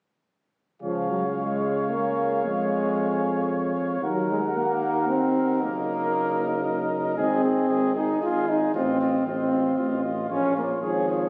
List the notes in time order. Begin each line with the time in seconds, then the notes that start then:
0.82 C#2 F3 G#4 C#5 F5
1.10 F#3
1.37 G#3
1.91 A#3
2.44 F2 G#3
4.02 D#2 F#3 D#4 A#4 F#5
4.30 G#3
4.56 A#3
5.09 C4
5.61 F#1 A#3 D#5
7.17 G#1 C4 D#4 G#4 D#5
7.43 D#4 G#4 D#5
7.69 G#1 D#4 G#4 D#5
7.95 D#4 G#4 D#5
8.21 G#1 D#4 F4 G#4 D#5
8.47 D#4 G#4 D#5
8.73 A1 C4 F4 D#5
9.01 F4 D#5
9.26 A1 C4 F4 D#5
9.51 F4 D#5
9.77 A1 F4 D#5
10.02 F4 D#5
10.29 A#1 C#4 F4 C#5
10.54 A#3 F4 C#5
10.82 G#1 F3 F4 G#4 C#5
11.09 F4 G#4 C#5